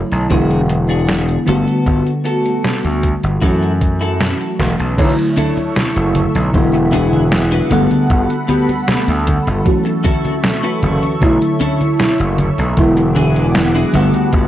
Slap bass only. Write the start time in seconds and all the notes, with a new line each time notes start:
0.12 B1
0.30 E1
1.48 G1
1.86 G1
2.85 D2
3.24 G1
3.42 F#2
4.59 E1
4.79 B1
4.98 B1
5.96 F#1
6.35 B1
6.54 E1
7.71 G1
8.10 G1
9.08 D2
9.47 G1
10.83 F#1
11.22 B1
12.20 F#1
12.59 B1
12.77 E1
13.94 G1
14.33 G1